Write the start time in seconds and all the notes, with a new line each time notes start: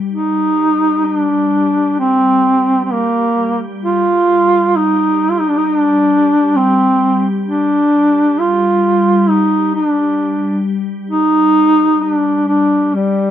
0.11 G3 D#4
1.05 D4
2.00 C4
2.84 C4
2.93 A#3
3.84 F4
4.76 D#4
5.31 F4
5.40 D#4
5.49 D4
5.57 D#4
5.66 D4
6.56 C4
7.48 D4
8.40 F4
9.29 D#4
9.75 D4
11.11 D#4
12.02 D4
12.48 D4
12.95 G3